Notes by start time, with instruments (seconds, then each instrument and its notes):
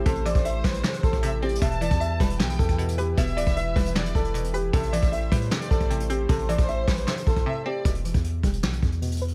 Already playing: analog synth pad A3 E4 G4 C5, synth pluck C4
0.06 808-style bass A1, synth pluck C3, grand piano A4, violin section C5, kick, closed hi-hat
0.15 closed hi-hat
0.26 synth pluck E3, grand piano D5, closed hi-hat
0.35 808-style bass A1, kick, closed hi-hat
0.45 grand piano E5, closed hi-hat
0.64 808-style bass A1, synth pluck G3, grand piano B4, kick, snare, open hi-hat
0.74 closed hi-hat
0.83 synth pluck C3, snare
0.94 closed hi-hat
1.03 808-style bass A1, grand piano A4, kick, closed hi-hat
1.13 kick, closed hi-hat
1.23 synth pluck C3, violin section E5, closed hi-hat
1.42 synth pluck C4, grand piano G4, violin section D5, closed hi-hat
1.49 closed hi-hat
1.55 closed hi-hat
1.62 808-style bass E1, synth pluck B2, analog synth pad E3 E4 B4, grand piano E5, violin section A5, kick, closed hi-hat
1.71 closed hi-hat
1.81 synth pluck E3, grand piano D5, closed hi-hat
1.91 808-style bass E2, kick, closed hi-hat
2.00 grand piano E5, closed hi-hat
2.20 808-style bass E1, synth pluck G3, grand piano B4, kick, closed hi-hat
2.30 closed hi-hat
2.40 808-style bass B1, synth pluck B2, violin section G5, snare
2.50 closed hi-hat
2.59 808-style bass E2, grand piano A4, kick, closed hi-hat
2.69 kick, closed hi-hat
2.78 synth pluck B2, closed hi-hat
2.88 closed hi-hat
2.98 grand piano G4, synth pluck B4, closed hi-hat
3.17 808-style bass E1, synth pluck B2, grand piano E5, violin section E5, kick, closed hi-hat
3.27 closed hi-hat
3.37 808-style bass D1, synth pluck E3, grand piano D5, closed hi-hat
3.47 808-style bass E1, kick, closed hi-hat
3.56 grand piano E5, closed hi-hat
3.76 808-style bass E1, synth pluck G3, grand piano B4, kick, open hi-hat
3.86 closed hi-hat
3.95 synth pluck B2, violin section D5, snare
4.06 closed hi-hat
4.15 808-style bass E1, grand piano A4, kick, closed hi-hat
4.24 closed hi-hat
4.34 synth pluck B2, closed hi-hat
4.44 closed hi-hat
4.53 grand piano G4, synth pluck B4, closed hi-hat
4.73 808-style bass A1, synth pluck C3, analog synth pad A3 G4 C5, grand piano A4, violin section E5, kick, closed hi-hat
4.83 closed hi-hat
4.92 synth pluck E3, grand piano D5, closed hi-hat
5.02 808-style bass A1, kick, closed hi-hat
5.12 grand piano E5, closed hi-hat
5.32 808-style bass A2, synth pluck G3, grand piano B4, kick, closed hi-hat
5.42 closed hi-hat
5.51 synth pluck C3, violin section D5, snare
5.61 closed hi-hat
5.70 808-style bass A1, grand piano A4, kick, closed hi-hat
5.80 kick, closed hi-hat
5.90 synth pluck C3, closed hi-hat
6.00 closed hi-hat
6.10 synth pluck C4, grand piano G4, closed hi-hat
6.29 808-style bass A1, synth pluck C3, grand piano A4, violin section C5, kick, closed hi-hat
6.39 closed hi-hat
6.49 synth pluck E3, grand piano D5, closed hi-hat
6.58 808-style bass A1, kick, closed hi-hat
6.68 grand piano E5, closed hi-hat
6.88 808-style bass A1, synth pluck G3, grand piano B4, kick, snare, open hi-hat
6.97 closed hi-hat
7.07 synth pluck C3, snare
7.17 closed hi-hat
7.27 808-style bass A1, grand piano A4, kick, closed hi-hat
7.36 kick, closed hi-hat
7.46 synth pluck C3, violin section E5
7.66 synth pluck C4, grand piano G4, violin section D5
7.85 808-style bass E1, synth pluck B2, kick, closed hi-hat
7.95 closed hi-hat
8.04 synth pluck E3, closed hi-hat
8.14 808-style bass E2, kick, closed hi-hat
8.24 closed hi-hat
8.43 808-style bass E1, synth pluck G3, kick, closed hi-hat
8.53 closed hi-hat
8.63 808-style bass B1, synth pluck B2, snare
8.73 closed hi-hat
8.83 808-style bass E2, kick, closed hi-hat
8.92 closed hi-hat
9.02 synth pluck B2, closed hi-hat
9.07 closed hi-hat
9.12 closed hi-hat
9.17 closed hi-hat
9.21 synth pluck B4, closed hi-hat
9.28 closed hi-hat